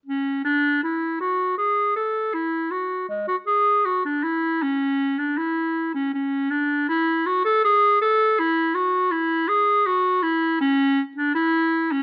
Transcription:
X:1
M:4/4
L:1/16
Q:1/4=80
K:Emix
V:1 name="Clarinet"
C2 D2 E2 F2 G2 A2 E2 F2 | G, F G2 F D E2 C3 D E3 C | C2 D2 E2 F A G2 A2 E2 F2 | E2 G2 F2 E2 C3 D E3 C |]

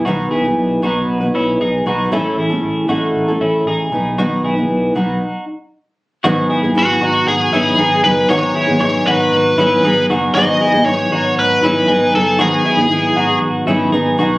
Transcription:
X:1
M:4/4
L:1/16
Q:1/4=117
K:G#phr
V:1 name="Lead electric guitar"
z16 | z16 | z16 | z4 F4 G6 B2 |
c4 c2 B8 z2 | d4 c4 B6 A2 | G8 z8 |]
V:2 name="Clean electric guitar"
[DF]2 [EG]4 [DF]4 [CE]2 [DG]2 [DF]2 | [CE]2 [EG]4 [DF]4 [CE]2 [DG]4 | [DF]2 [EG]4 [DF]4 z6 | [DF]2 [EG]4 [DF]4 [CE]2 [DG]4 |
[DF]2 [EG]4 [DF]4 [CE]2 [DG]2 [DF]2 | [DF]2 [EG]4 [DF]4 [CE]2 [DG]4 | [DF]2 [EG]4 [DF]4 [CE]2 [DG]2 [DF]2 |]
V:3 name="Steel-string acoustic guitar"
[B,,D,F,B,DB]3 [F,B,DB]3 [F,B,DB]3 [F,B,DB]4- [F,B,DB] [F,B,DB]2 | [A,,E,A,CEA]3 [A,CEA]3 [A,CEA]3 [A,CEA]4- [A,CEA] [F,B,DB]2 | [B,,D,F,B,DB]3 [F,B,DB]3 [F,B,DB]2 z8 | [G,,D,F,B,DG]3 [F,B,DG] [F,B,DG]6 [F,B,DG]2 [F,B,DG]2 [F,B,DG]2 |
[G,,D,F,B,DG]3 [F,B,DG] [F,B,DG]6 [F,B,DG]2 [F,B,DG]2 [F,B,DG]2 | [G,,D,F,B,DG]3 [F,B,DG] [F,B,DG]6 [F,B,DG]2 [F,B,DG]2 [F,B,DG]2 | [G,,D,F,B,DG]3 [F,B,DG] [F,B,DG]6 [F,B,DG]2 [F,B,DG]2 [F,B,DG]2 |]
V:4 name="Fingered electric bass" clef=bass
B,,,2 B,,,2 B,,,2 B,,,2 B,,,2 B,,,2 B,,,2 B,,,2 | A,,,2 A,,,2 A,,,2 A,,,2 A,,,2 A,,,2 A,,,2 B,,,2- | B,,,2 B,,,2 B,,,2 B,,,2 z8 | G,,,2 z G,,, G,,,2 G,,,2 G,,,2 G,,,2 G,,,2 F,,,2 |
G,,,2 z G,,, G,,,2 G,,,2 G,,,2 G,,,2 G,,,2 F,,,2 | G,,,2 z G,,, G,,,2 G,,,2 G,,,2 G,,,2 G,,,2 F,,,2 | G,,,2 z G,,, G,,,2 G,,,2 G,,,2 G,,,2 G,,,2 B,,,2 |]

